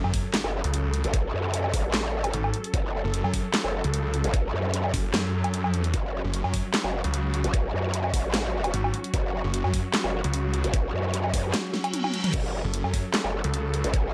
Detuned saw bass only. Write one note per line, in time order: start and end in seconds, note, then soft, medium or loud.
0.04 0.23 F#2 loud
0.64 1.03 C#2 loud
2.34 2.52 G#1 loud
3.04 3.23 F#1 loud
3.24 3.43 F#2 loud
3.84 4.23 C#2 loud
4.94 5.12 F#1 loud
5.14 5.69 F#2 medium
5.69 5.92 F2 medium
6.24 6.43 F#1 loud
6.44 6.63 F#2 loud
7.04 7.43 C#2 loud
8.74 8.92 G#1 loud
9.44 9.63 F#1 loud
9.64 9.83 F#2 loud
10.24 10.63 C#2 loud
12.64 12.83 F#1 loud
12.84 13.03 F#2 loud
13.44 13.83 C#2 loud